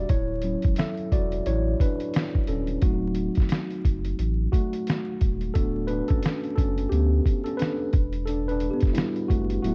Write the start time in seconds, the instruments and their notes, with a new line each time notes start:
Already playing: tine electric piano G3 D4 F#4 G4 D5 E5
0.09 sub bass D1, tine electric piano E4 C#5, kick, closed hi-hat
0.42 tine electric piano F#3 C#4 E4, closed hi-hat
0.62 sub bass E1, kick, closed hi-hat
0.76 tine electric piano A4 E5, snare, closed hi-hat
0.97 closed hi-hat
1.12 sub bass E1, tine electric piano F#4 D5, kick, closed hi-hat
1.32 closed hi-hat
1.46 sub bass A1, tine electric piano E4 C#5, closed hi-hat
1.80 tine electric piano D4 B4, kick, closed hi-hat
2.00 closed hi-hat
2.14 snare, closed hi-hat
2.35 kick
2.47 sub bass D#1, tine electric piano C#4 A4, closed hi-hat
2.67 closed hi-hat
2.82 sub bass D1, tine electric piano F#3 A3 C4 D#4 F#4, kick, closed hi-hat
3.15 closed hi-hat
3.35 sub bass F#1, kick, closed hi-hat
3.40 snare
3.49 snare, closed hi-hat
3.70 closed hi-hat
3.85 sub bass F#1, kick, closed hi-hat
4.05 closed hi-hat
4.19 sub bass A1, closed hi-hat
4.52 tine electric piano A3 F#4, kick, closed hi-hat
4.73 closed hi-hat
4.87 snare, closed hi-hat
5.21 sub bass D#1, kick, closed hi-hat
5.41 closed hi-hat
5.54 sub bass D1, tine electric piano A3 B3 D4 F#4 A4, kick, closed hi-hat
5.87 tine electric piano D4 B4, closed hi-hat
6.08 sub bass F#1, tine electric piano C#4 A4, kick, closed hi-hat
6.23 snare, closed hi-hat
6.44 closed hi-hat
6.55 sub bass F#1, tine electric piano C#4 A4, kick, closed hi-hat
6.78 closed hi-hat
6.89 sub bass D2, tine electric piano B3 G4, closed hi-hat
7.26 kick, closed hi-hat
7.44 tine electric piano C#4 A4, closed hi-hat
7.57 tine electric piano D4 B4, closed hi-hat
7.62 snare
7.93 sub bass E1, kick, closed hi-hat
8.13 closed hi-hat
8.26 tine electric piano D4 A4, closed hi-hat
8.48 tine electric piano D4 B4, closed hi-hat
8.60 closed hi-hat
8.71 tine electric piano B3 G4
8.80 sub bass E1, kick, closed hi-hat
8.85 snare
8.93 tine electric piano G3 D4 E4 F#4, closed hi-hat
8.98 snare
9.16 closed hi-hat
9.28 sub bass F#1, tine electric piano A3 F#4, kick, closed hi-hat
9.50 closed hi-hat
9.63 sub bass D1, tine electric piano F#3 A3 B3 E4 F#4, closed hi-hat